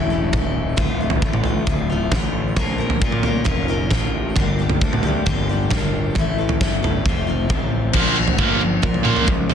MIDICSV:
0, 0, Header, 1, 5, 480
1, 0, Start_track
1, 0, Key_signature, -1, "minor"
1, 0, Tempo, 447761
1, 843, Time_signature, 4, 2, 24, 8
1, 10227, End_track
2, 0, Start_track
2, 0, Title_t, "Steel-string acoustic guitar"
2, 0, Program_c, 0, 25
2, 0, Note_on_c, 0, 45, 78
2, 0, Note_on_c, 0, 52, 83
2, 0, Note_on_c, 0, 57, 83
2, 0, Note_on_c, 0, 61, 83
2, 108, Note_on_c, 0, 69, 71
2, 118, Note_on_c, 0, 64, 62
2, 119, Note_off_c, 0, 61, 0
2, 128, Note_off_c, 0, 57, 0
2, 132, Note_on_c, 0, 61, 55
2, 141, Note_on_c, 0, 57, 50
2, 336, Note_off_c, 0, 57, 0
2, 349, Note_on_c, 0, 57, 63
2, 357, Note_off_c, 0, 45, 0
2, 358, Note_off_c, 0, 61, 0
2, 362, Note_off_c, 0, 52, 0
2, 367, Note_off_c, 0, 64, 0
2, 371, Note_on_c, 0, 61, 71
2, 373, Note_off_c, 0, 69, 0
2, 380, Note_on_c, 0, 64, 68
2, 386, Note_on_c, 0, 69, 69
2, 819, Note_on_c, 0, 38, 85
2, 822, Note_off_c, 0, 57, 0
2, 833, Note_off_c, 0, 61, 0
2, 835, Note_on_c, 0, 45, 76
2, 837, Note_off_c, 0, 64, 0
2, 838, Note_on_c, 0, 50, 87
2, 840, Note_off_c, 0, 69, 0
2, 846, Note_on_c, 0, 57, 84
2, 855, Note_on_c, 0, 65, 86
2, 1073, Note_off_c, 0, 65, 0
2, 1077, Note_on_c, 0, 65, 61
2, 1080, Note_off_c, 0, 57, 0
2, 1093, Note_on_c, 0, 57, 51
2, 1095, Note_off_c, 0, 50, 0
2, 1108, Note_on_c, 0, 50, 47
2, 1306, Note_off_c, 0, 45, 0
2, 1312, Note_off_c, 0, 38, 0
2, 1315, Note_off_c, 0, 50, 0
2, 1319, Note_on_c, 0, 45, 51
2, 1327, Note_off_c, 0, 57, 0
2, 1328, Note_on_c, 0, 50, 64
2, 1340, Note_on_c, 0, 57, 64
2, 1342, Note_off_c, 0, 65, 0
2, 1346, Note_on_c, 0, 65, 66
2, 1552, Note_off_c, 0, 65, 0
2, 1557, Note_on_c, 0, 65, 63
2, 1558, Note_off_c, 0, 57, 0
2, 1570, Note_on_c, 0, 57, 51
2, 1575, Note_off_c, 0, 50, 0
2, 1588, Note_on_c, 0, 50, 47
2, 1780, Note_off_c, 0, 45, 0
2, 1785, Note_on_c, 0, 38, 76
2, 1792, Note_on_c, 0, 45, 83
2, 1794, Note_off_c, 0, 50, 0
2, 1802, Note_off_c, 0, 57, 0
2, 1807, Note_on_c, 0, 50, 88
2, 1809, Note_off_c, 0, 65, 0
2, 1815, Note_on_c, 0, 57, 81
2, 1822, Note_on_c, 0, 65, 92
2, 2019, Note_off_c, 0, 65, 0
2, 2032, Note_on_c, 0, 65, 69
2, 2045, Note_off_c, 0, 57, 0
2, 2054, Note_off_c, 0, 50, 0
2, 2058, Note_on_c, 0, 57, 63
2, 2067, Note_on_c, 0, 50, 52
2, 2261, Note_off_c, 0, 45, 0
2, 2273, Note_on_c, 0, 45, 60
2, 2275, Note_off_c, 0, 38, 0
2, 2275, Note_off_c, 0, 50, 0
2, 2288, Note_on_c, 0, 50, 70
2, 2293, Note_off_c, 0, 57, 0
2, 2302, Note_off_c, 0, 65, 0
2, 2306, Note_on_c, 0, 57, 67
2, 2315, Note_on_c, 0, 65, 77
2, 2745, Note_off_c, 0, 45, 0
2, 2752, Note_off_c, 0, 50, 0
2, 2753, Note_on_c, 0, 53, 78
2, 2754, Note_on_c, 0, 46, 83
2, 2761, Note_off_c, 0, 57, 0
2, 2766, Note_off_c, 0, 65, 0
2, 2766, Note_on_c, 0, 58, 86
2, 2769, Note_on_c, 0, 61, 84
2, 2781, Note_on_c, 0, 70, 95
2, 2782, Note_on_c, 0, 65, 83
2, 2976, Note_off_c, 0, 70, 0
2, 2981, Note_on_c, 0, 70, 60
2, 2984, Note_off_c, 0, 65, 0
2, 2992, Note_off_c, 0, 61, 0
2, 2996, Note_on_c, 0, 65, 52
2, 3005, Note_on_c, 0, 61, 57
2, 3013, Note_off_c, 0, 58, 0
2, 3017, Note_on_c, 0, 58, 51
2, 3228, Note_off_c, 0, 58, 0
2, 3231, Note_off_c, 0, 61, 0
2, 3232, Note_on_c, 0, 58, 65
2, 3240, Note_off_c, 0, 46, 0
2, 3240, Note_off_c, 0, 53, 0
2, 3243, Note_off_c, 0, 65, 0
2, 3244, Note_on_c, 0, 61, 62
2, 3256, Note_on_c, 0, 65, 70
2, 3263, Note_off_c, 0, 70, 0
2, 3268, Note_on_c, 0, 70, 62
2, 3458, Note_off_c, 0, 70, 0
2, 3463, Note_on_c, 0, 70, 61
2, 3470, Note_off_c, 0, 65, 0
2, 3480, Note_off_c, 0, 61, 0
2, 3483, Note_on_c, 0, 65, 57
2, 3493, Note_on_c, 0, 61, 58
2, 3500, Note_off_c, 0, 58, 0
2, 3504, Note_on_c, 0, 58, 51
2, 3692, Note_on_c, 0, 46, 86
2, 3693, Note_off_c, 0, 58, 0
2, 3701, Note_off_c, 0, 61, 0
2, 3703, Note_off_c, 0, 65, 0
2, 3705, Note_on_c, 0, 53, 93
2, 3705, Note_on_c, 0, 58, 83
2, 3712, Note_off_c, 0, 70, 0
2, 3714, Note_on_c, 0, 61, 91
2, 3716, Note_on_c, 0, 65, 92
2, 3725, Note_on_c, 0, 70, 84
2, 3934, Note_off_c, 0, 70, 0
2, 3943, Note_off_c, 0, 65, 0
2, 3947, Note_on_c, 0, 70, 69
2, 3952, Note_off_c, 0, 61, 0
2, 3956, Note_on_c, 0, 65, 67
2, 3961, Note_off_c, 0, 58, 0
2, 3965, Note_on_c, 0, 61, 61
2, 3974, Note_on_c, 0, 58, 56
2, 4178, Note_off_c, 0, 58, 0
2, 4189, Note_off_c, 0, 46, 0
2, 4191, Note_on_c, 0, 58, 60
2, 4192, Note_off_c, 0, 61, 0
2, 4196, Note_off_c, 0, 53, 0
2, 4198, Note_off_c, 0, 65, 0
2, 4205, Note_on_c, 0, 61, 66
2, 4207, Note_off_c, 0, 70, 0
2, 4211, Note_on_c, 0, 65, 72
2, 4219, Note_on_c, 0, 70, 69
2, 4665, Note_off_c, 0, 58, 0
2, 4672, Note_off_c, 0, 61, 0
2, 4675, Note_off_c, 0, 65, 0
2, 4679, Note_off_c, 0, 70, 0
2, 4680, Note_on_c, 0, 43, 82
2, 4685, Note_on_c, 0, 50, 84
2, 4695, Note_on_c, 0, 58, 90
2, 4699, Note_on_c, 0, 55, 75
2, 4709, Note_on_c, 0, 62, 90
2, 4712, Note_on_c, 0, 67, 89
2, 4904, Note_off_c, 0, 67, 0
2, 4914, Note_off_c, 0, 62, 0
2, 4917, Note_on_c, 0, 67, 63
2, 4927, Note_on_c, 0, 62, 62
2, 4932, Note_off_c, 0, 58, 0
2, 4939, Note_off_c, 0, 55, 0
2, 4945, Note_on_c, 0, 58, 49
2, 4952, Note_on_c, 0, 55, 54
2, 5144, Note_off_c, 0, 55, 0
2, 5157, Note_on_c, 0, 55, 61
2, 5163, Note_off_c, 0, 58, 0
2, 5164, Note_off_c, 0, 43, 0
2, 5166, Note_off_c, 0, 50, 0
2, 5175, Note_off_c, 0, 62, 0
2, 5176, Note_on_c, 0, 58, 70
2, 5177, Note_off_c, 0, 67, 0
2, 5188, Note_on_c, 0, 62, 68
2, 5190, Note_on_c, 0, 67, 64
2, 5385, Note_off_c, 0, 67, 0
2, 5398, Note_on_c, 0, 67, 66
2, 5402, Note_off_c, 0, 62, 0
2, 5415, Note_off_c, 0, 58, 0
2, 5415, Note_on_c, 0, 62, 55
2, 5421, Note_off_c, 0, 55, 0
2, 5428, Note_on_c, 0, 58, 53
2, 5434, Note_on_c, 0, 55, 51
2, 5636, Note_on_c, 0, 43, 89
2, 5641, Note_off_c, 0, 55, 0
2, 5645, Note_on_c, 0, 50, 91
2, 5648, Note_off_c, 0, 62, 0
2, 5651, Note_off_c, 0, 58, 0
2, 5654, Note_on_c, 0, 55, 79
2, 5661, Note_on_c, 0, 62, 86
2, 5663, Note_off_c, 0, 67, 0
2, 5664, Note_on_c, 0, 58, 88
2, 5676, Note_on_c, 0, 67, 96
2, 5875, Note_off_c, 0, 67, 0
2, 5887, Note_off_c, 0, 62, 0
2, 5888, Note_on_c, 0, 67, 72
2, 5899, Note_off_c, 0, 58, 0
2, 5900, Note_on_c, 0, 62, 62
2, 5911, Note_off_c, 0, 55, 0
2, 5912, Note_on_c, 0, 58, 59
2, 5924, Note_on_c, 0, 55, 54
2, 6122, Note_off_c, 0, 43, 0
2, 6123, Note_off_c, 0, 55, 0
2, 6127, Note_off_c, 0, 50, 0
2, 6136, Note_on_c, 0, 55, 67
2, 6137, Note_off_c, 0, 58, 0
2, 6150, Note_on_c, 0, 58, 75
2, 6151, Note_off_c, 0, 62, 0
2, 6155, Note_off_c, 0, 67, 0
2, 6164, Note_on_c, 0, 62, 68
2, 6168, Note_on_c, 0, 67, 76
2, 6598, Note_off_c, 0, 55, 0
2, 6605, Note_off_c, 0, 58, 0
2, 6608, Note_on_c, 0, 45, 86
2, 6611, Note_off_c, 0, 62, 0
2, 6612, Note_on_c, 0, 52, 80
2, 6613, Note_off_c, 0, 67, 0
2, 6624, Note_on_c, 0, 57, 89
2, 6631, Note_on_c, 0, 61, 88
2, 6637, Note_on_c, 0, 64, 90
2, 6640, Note_on_c, 0, 69, 97
2, 6828, Note_off_c, 0, 69, 0
2, 6838, Note_off_c, 0, 64, 0
2, 6841, Note_on_c, 0, 69, 63
2, 6851, Note_on_c, 0, 64, 55
2, 6854, Note_off_c, 0, 61, 0
2, 6860, Note_off_c, 0, 57, 0
2, 6867, Note_on_c, 0, 61, 54
2, 6873, Note_on_c, 0, 57, 50
2, 7070, Note_off_c, 0, 57, 0
2, 7081, Note_off_c, 0, 61, 0
2, 7082, Note_on_c, 0, 57, 70
2, 7088, Note_off_c, 0, 45, 0
2, 7090, Note_off_c, 0, 52, 0
2, 7094, Note_on_c, 0, 61, 62
2, 7096, Note_off_c, 0, 64, 0
2, 7097, Note_off_c, 0, 69, 0
2, 7109, Note_on_c, 0, 64, 68
2, 7110, Note_on_c, 0, 69, 69
2, 7303, Note_off_c, 0, 69, 0
2, 7316, Note_on_c, 0, 69, 60
2, 7321, Note_off_c, 0, 64, 0
2, 7326, Note_off_c, 0, 61, 0
2, 7334, Note_on_c, 0, 64, 58
2, 7339, Note_on_c, 0, 61, 52
2, 7344, Note_off_c, 0, 57, 0
2, 7357, Note_on_c, 0, 57, 51
2, 7548, Note_off_c, 0, 69, 0
2, 7556, Note_off_c, 0, 64, 0
2, 7559, Note_off_c, 0, 61, 0
2, 7564, Note_on_c, 0, 41, 75
2, 7568, Note_off_c, 0, 57, 0
2, 7573, Note_on_c, 0, 48, 82
2, 7586, Note_on_c, 0, 53, 89
2, 7591, Note_on_c, 0, 60, 85
2, 7593, Note_on_c, 0, 57, 84
2, 7600, Note_on_c, 0, 65, 91
2, 7778, Note_off_c, 0, 65, 0
2, 7791, Note_on_c, 0, 65, 58
2, 7792, Note_off_c, 0, 60, 0
2, 7805, Note_off_c, 0, 57, 0
2, 7805, Note_on_c, 0, 60, 59
2, 7809, Note_off_c, 0, 53, 0
2, 7817, Note_on_c, 0, 57, 55
2, 7822, Note_on_c, 0, 53, 51
2, 8017, Note_off_c, 0, 53, 0
2, 8029, Note_off_c, 0, 57, 0
2, 8030, Note_on_c, 0, 53, 63
2, 8039, Note_off_c, 0, 60, 0
2, 8042, Note_on_c, 0, 57, 73
2, 8046, Note_off_c, 0, 41, 0
2, 8047, Note_off_c, 0, 65, 0
2, 8050, Note_off_c, 0, 48, 0
2, 8052, Note_on_c, 0, 60, 69
2, 8060, Note_on_c, 0, 65, 72
2, 8504, Note_off_c, 0, 53, 0
2, 8510, Note_off_c, 0, 57, 0
2, 8515, Note_off_c, 0, 60, 0
2, 8517, Note_on_c, 0, 46, 63
2, 8519, Note_off_c, 0, 65, 0
2, 8747, Note_on_c, 0, 53, 62
2, 8995, Note_on_c, 0, 58, 55
2, 9233, Note_on_c, 0, 61, 60
2, 9456, Note_on_c, 0, 70, 72
2, 9697, Note_off_c, 0, 61, 0
2, 9701, Note_on_c, 0, 61, 68
2, 9720, Note_off_c, 0, 46, 0
2, 9929, Note_on_c, 0, 65, 60
2, 9954, Note_off_c, 0, 53, 0
2, 10188, Note_off_c, 0, 61, 0
2, 10192, Note_on_c, 0, 61, 67
2, 10198, Note_off_c, 0, 58, 0
2, 10227, Note_off_c, 0, 61, 0
2, 10227, Note_off_c, 0, 65, 0
2, 10227, Note_off_c, 0, 70, 0
2, 10227, End_track
3, 0, Start_track
3, 0, Title_t, "Overdriven electric guitar"
3, 0, Program_c, 1, 29
3, 8516, Note_on_c, 1, 46, 79
3, 8520, Note_on_c, 1, 53, 90
3, 8527, Note_on_c, 1, 58, 84
3, 8741, Note_off_c, 1, 46, 0
3, 8743, Note_off_c, 1, 53, 0
3, 8752, Note_off_c, 1, 58, 0
3, 8754, Note_on_c, 1, 46, 60
3, 8756, Note_on_c, 1, 53, 70
3, 8976, Note_off_c, 1, 46, 0
3, 8977, Note_off_c, 1, 53, 0
3, 8991, Note_on_c, 1, 46, 78
3, 9000, Note_on_c, 1, 53, 84
3, 9001, Note_on_c, 1, 58, 98
3, 9205, Note_off_c, 1, 46, 0
3, 9218, Note_on_c, 1, 46, 69
3, 9221, Note_off_c, 1, 53, 0
3, 9229, Note_off_c, 1, 58, 0
3, 9234, Note_on_c, 1, 53, 75
3, 9448, Note_off_c, 1, 46, 0
3, 9455, Note_off_c, 1, 53, 0
3, 9469, Note_on_c, 1, 46, 64
3, 9470, Note_on_c, 1, 53, 72
3, 9676, Note_off_c, 1, 46, 0
3, 9686, Note_off_c, 1, 53, 0
3, 9688, Note_on_c, 1, 46, 80
3, 9699, Note_on_c, 1, 53, 76
3, 9706, Note_on_c, 1, 58, 82
3, 9932, Note_off_c, 1, 46, 0
3, 9937, Note_off_c, 1, 53, 0
3, 9940, Note_off_c, 1, 58, 0
3, 9949, Note_on_c, 1, 46, 59
3, 9962, Note_on_c, 1, 53, 66
3, 10172, Note_off_c, 1, 46, 0
3, 10173, Note_off_c, 1, 53, 0
3, 10186, Note_on_c, 1, 53, 69
3, 10189, Note_on_c, 1, 46, 64
3, 10227, Note_off_c, 1, 46, 0
3, 10227, Note_off_c, 1, 53, 0
3, 10227, End_track
4, 0, Start_track
4, 0, Title_t, "Picked electric bass"
4, 0, Program_c, 2, 34
4, 0, Note_on_c, 2, 28, 80
4, 357, Note_off_c, 2, 28, 0
4, 357, Note_on_c, 2, 27, 86
4, 778, Note_off_c, 2, 27, 0
4, 830, Note_on_c, 2, 26, 89
4, 1255, Note_off_c, 2, 26, 0
4, 1308, Note_on_c, 2, 33, 77
4, 1734, Note_off_c, 2, 33, 0
4, 1791, Note_on_c, 2, 26, 88
4, 2216, Note_off_c, 2, 26, 0
4, 2267, Note_on_c, 2, 33, 87
4, 2694, Note_off_c, 2, 33, 0
4, 2749, Note_on_c, 2, 34, 97
4, 3175, Note_off_c, 2, 34, 0
4, 3230, Note_on_c, 2, 46, 72
4, 3656, Note_off_c, 2, 46, 0
4, 3706, Note_on_c, 2, 29, 76
4, 4192, Note_off_c, 2, 29, 0
4, 4192, Note_on_c, 2, 33, 82
4, 4617, Note_off_c, 2, 33, 0
4, 4678, Note_on_c, 2, 31, 86
4, 5101, Note_off_c, 2, 31, 0
4, 5162, Note_on_c, 2, 38, 72
4, 5583, Note_off_c, 2, 38, 0
4, 5643, Note_on_c, 2, 31, 88
4, 6064, Note_off_c, 2, 31, 0
4, 6123, Note_on_c, 2, 31, 85
4, 6544, Note_off_c, 2, 31, 0
4, 6605, Note_on_c, 2, 33, 94
4, 7025, Note_off_c, 2, 33, 0
4, 7083, Note_on_c, 2, 31, 70
4, 7504, Note_off_c, 2, 31, 0
4, 7567, Note_on_c, 2, 29, 83
4, 8041, Note_off_c, 2, 29, 0
4, 8041, Note_on_c, 2, 33, 85
4, 8462, Note_off_c, 2, 33, 0
4, 8514, Note_on_c, 2, 34, 91
4, 8938, Note_off_c, 2, 34, 0
4, 8989, Note_on_c, 2, 31, 81
4, 9414, Note_off_c, 2, 31, 0
4, 9469, Note_on_c, 2, 46, 73
4, 9943, Note_on_c, 2, 37, 80
4, 9959, Note_off_c, 2, 46, 0
4, 10227, Note_off_c, 2, 37, 0
4, 10227, End_track
5, 0, Start_track
5, 0, Title_t, "Drums"
5, 353, Note_on_c, 9, 43, 72
5, 353, Note_on_c, 9, 47, 67
5, 357, Note_on_c, 9, 36, 96
5, 461, Note_off_c, 9, 43, 0
5, 461, Note_off_c, 9, 47, 0
5, 464, Note_off_c, 9, 36, 0
5, 829, Note_on_c, 9, 43, 72
5, 834, Note_on_c, 9, 36, 90
5, 936, Note_off_c, 9, 43, 0
5, 941, Note_off_c, 9, 36, 0
5, 1179, Note_on_c, 9, 43, 76
5, 1287, Note_off_c, 9, 43, 0
5, 1309, Note_on_c, 9, 36, 95
5, 1417, Note_off_c, 9, 36, 0
5, 1430, Note_on_c, 9, 47, 68
5, 1537, Note_off_c, 9, 47, 0
5, 1540, Note_on_c, 9, 43, 73
5, 1647, Note_off_c, 9, 43, 0
5, 1790, Note_on_c, 9, 36, 91
5, 1790, Note_on_c, 9, 43, 77
5, 1897, Note_off_c, 9, 36, 0
5, 1897, Note_off_c, 9, 43, 0
5, 2268, Note_on_c, 9, 43, 80
5, 2268, Note_on_c, 9, 47, 73
5, 2271, Note_on_c, 9, 36, 94
5, 2281, Note_on_c, 9, 38, 64
5, 2375, Note_off_c, 9, 43, 0
5, 2375, Note_off_c, 9, 47, 0
5, 2378, Note_off_c, 9, 36, 0
5, 2388, Note_off_c, 9, 38, 0
5, 2749, Note_on_c, 9, 43, 73
5, 2752, Note_on_c, 9, 36, 83
5, 2857, Note_off_c, 9, 43, 0
5, 2859, Note_off_c, 9, 36, 0
5, 3107, Note_on_c, 9, 43, 75
5, 3214, Note_off_c, 9, 43, 0
5, 3233, Note_on_c, 9, 36, 96
5, 3341, Note_off_c, 9, 36, 0
5, 3348, Note_on_c, 9, 47, 71
5, 3455, Note_off_c, 9, 47, 0
5, 3464, Note_on_c, 9, 43, 75
5, 3571, Note_off_c, 9, 43, 0
5, 3700, Note_on_c, 9, 43, 81
5, 3711, Note_on_c, 9, 36, 98
5, 3807, Note_off_c, 9, 43, 0
5, 3818, Note_off_c, 9, 36, 0
5, 4186, Note_on_c, 9, 43, 74
5, 4186, Note_on_c, 9, 47, 70
5, 4194, Note_on_c, 9, 36, 105
5, 4199, Note_on_c, 9, 38, 68
5, 4293, Note_off_c, 9, 43, 0
5, 4293, Note_off_c, 9, 47, 0
5, 4301, Note_off_c, 9, 36, 0
5, 4306, Note_off_c, 9, 38, 0
5, 4670, Note_on_c, 9, 43, 73
5, 4678, Note_on_c, 9, 36, 97
5, 4777, Note_off_c, 9, 43, 0
5, 4786, Note_off_c, 9, 36, 0
5, 5033, Note_on_c, 9, 43, 81
5, 5140, Note_off_c, 9, 43, 0
5, 5161, Note_on_c, 9, 36, 90
5, 5269, Note_off_c, 9, 36, 0
5, 5283, Note_on_c, 9, 47, 67
5, 5391, Note_off_c, 9, 47, 0
5, 5392, Note_on_c, 9, 43, 73
5, 5499, Note_off_c, 9, 43, 0
5, 5642, Note_on_c, 9, 43, 72
5, 5645, Note_on_c, 9, 36, 89
5, 5750, Note_off_c, 9, 43, 0
5, 5752, Note_off_c, 9, 36, 0
5, 6116, Note_on_c, 9, 43, 73
5, 6116, Note_on_c, 9, 47, 74
5, 6124, Note_on_c, 9, 36, 97
5, 6129, Note_on_c, 9, 38, 68
5, 6223, Note_off_c, 9, 43, 0
5, 6223, Note_off_c, 9, 47, 0
5, 6231, Note_off_c, 9, 36, 0
5, 6236, Note_off_c, 9, 38, 0
5, 6595, Note_on_c, 9, 43, 70
5, 6603, Note_on_c, 9, 36, 89
5, 6702, Note_off_c, 9, 43, 0
5, 6710, Note_off_c, 9, 36, 0
5, 6958, Note_on_c, 9, 43, 79
5, 7065, Note_off_c, 9, 43, 0
5, 7084, Note_on_c, 9, 36, 98
5, 7090, Note_on_c, 9, 38, 71
5, 7192, Note_off_c, 9, 36, 0
5, 7197, Note_off_c, 9, 38, 0
5, 7335, Note_on_c, 9, 43, 74
5, 7442, Note_off_c, 9, 43, 0
5, 7564, Note_on_c, 9, 36, 94
5, 7567, Note_on_c, 9, 43, 71
5, 7671, Note_off_c, 9, 36, 0
5, 7674, Note_off_c, 9, 43, 0
5, 8040, Note_on_c, 9, 36, 90
5, 8040, Note_on_c, 9, 43, 78
5, 8040, Note_on_c, 9, 47, 72
5, 8147, Note_off_c, 9, 36, 0
5, 8147, Note_off_c, 9, 43, 0
5, 8147, Note_off_c, 9, 47, 0
5, 8505, Note_on_c, 9, 43, 70
5, 8505, Note_on_c, 9, 49, 84
5, 8513, Note_on_c, 9, 36, 94
5, 8612, Note_off_c, 9, 43, 0
5, 8612, Note_off_c, 9, 49, 0
5, 8621, Note_off_c, 9, 36, 0
5, 8872, Note_on_c, 9, 43, 79
5, 8979, Note_off_c, 9, 43, 0
5, 8989, Note_on_c, 9, 36, 93
5, 9096, Note_off_c, 9, 36, 0
5, 9467, Note_on_c, 9, 43, 73
5, 9470, Note_on_c, 9, 36, 96
5, 9574, Note_off_c, 9, 43, 0
5, 9577, Note_off_c, 9, 36, 0
5, 9587, Note_on_c, 9, 43, 70
5, 9694, Note_off_c, 9, 43, 0
5, 9701, Note_on_c, 9, 47, 72
5, 9808, Note_off_c, 9, 47, 0
5, 9825, Note_on_c, 9, 43, 75
5, 9932, Note_off_c, 9, 43, 0
5, 9935, Note_on_c, 9, 43, 65
5, 9946, Note_on_c, 9, 36, 104
5, 10042, Note_off_c, 9, 43, 0
5, 10053, Note_off_c, 9, 36, 0
5, 10179, Note_on_c, 9, 43, 76
5, 10227, Note_off_c, 9, 43, 0
5, 10227, End_track
0, 0, End_of_file